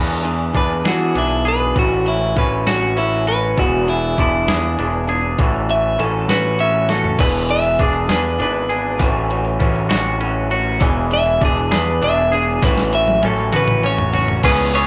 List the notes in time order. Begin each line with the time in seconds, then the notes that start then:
Already playing: E2 E3 B3 D4 G#4
0.23 B3 D4 G#4, closed hi-hat
0.53 E2 E3 B3 D4 G#4 B4, kick, closed hi-hat
0.84 E3 B3 D4 G#4, snare, closed hi-hat
0.88 F#4
1.15 B1 E3 B3 D4 E4 G#4, closed hi-hat
1.45 B3 D4 G#4 B4, closed hi-hat
1.75 A1 E3 A3 C#4 F#4, kick, closed hi-hat
2.06 A3 C#4 E4 F#4, closed hi-hat
2.36 A1 E3 A3 C#4 F#4 B4, kick, closed hi-hat
2.66 A1 A3 C#4 F#4, snare, closed hi-hat
2.96 E3 A3 C#4 E4 F#4, closed hi-hat
3.26 A3 C#4 F#4 B4, closed hi-hat
3.57 E1 E3 B3 D4 F#4 G#4, kick, closed hi-hat
3.87 B3 D4 E4 G#4, closed hi-hat
4.17 E1 E3 B3 D4 E4 G#4, kick, closed hi-hat
4.47 E2 B3 D4 G#4, snare, closed hi-hat
4.77 E1 E3 B3 D4 G#4, closed hi-hat
5.07 B3 D4 G#4, closed hi-hat
5.38 A1 E3 A3 C#4 F#4, kick, closed hi-hat
5.68 A3 C#4 F#4 E5, closed hi-hat
5.98 A1 E3 A3 C#4 F#4 A4, closed hi-hat
6.29 A1 A3 C#4 F#4 B4, snare, closed hi-hat
6.58 E3 A3 C#4 F#4 E5, closed hi-hat
6.88 A3 C#4 F#4 A4, snare, closed hi-hat
7.04 floor tom
7.19 E1 E3 B3 D4 G#4 B4, kick, clap, closed hi-hat, crash
7.49 B3 D4 G#4 E5, closed hi-hat
7.65 clap
7.79 E1 E3 B3 D4 G#4, kick, clap, closed hi-hat
7.94 clap
8.09 E2 B3 D4 G#4 B4, snare, clap, closed hi-hat
8.39 G#1 E3 B3 D4 G#4 B4, clap, closed hi-hat
8.69 B3 D4 G#4, closed hi-hat
8.99 A1 E3 A3 C#4 F#4, kick, clap, closed hi-hat
9.30 A3 C#4 F#4, closed hi-hat
9.46 clap
9.60 A1 E3 A3 C#4 F#4, kick, clap, closed hi-hat
9.76 clap
9.90 A1 A3 C#4 F#4, snare, clap, closed hi-hat
10.20 E3 A3 C#4 F#4, closed hi-hat
10.50 A3 C#4 F#4, closed hi-hat
10.80 E1 E3 B3 D4 G#4, kick, clap, closed hi-hat
11.10 B3 D4 G#4 E5, closed hi-hat
11.27 clap
11.40 E1 E3 B3 D4 G#4, kick, clap, closed hi-hat
11.45 G#4
11.57 clap
11.71 E2 B3 D4 G#4 B4, snare, clap, closed hi-hat
12.01 E1 E3 B3 D4 G#4 E5, clap, closed hi-hat
12.32 B3 D4 G#4, closed hi-hat
12.62 A1 E3 A3 C#4 F#4 B4, kick, snare, clap, closed hi-hat
12.78 snare, clap
12.92 A3 C#4 F#4 E5, clap, closed hi-hat
13.08 high tom
13.22 A1 E3 A3 C#4 F#4 A4, closed hi-hat, high tom
13.39 clap
13.52 A1 A3 C#4 F#4, clap, closed hi-hat, mid tom
13.56 B4
13.68 mid tom
13.82 E3 A3 C#4 F#4 C#5, closed hi-hat
13.98 floor tom
14.13 A3 C#4 F#4, closed hi-hat, floor tom
14.28 floor tom
14.43 C#2 E3 B3 C#4 G#4 B4, kick, clap, crash, ride
14.73 E3 B3 C#4 G#4 C#5, ride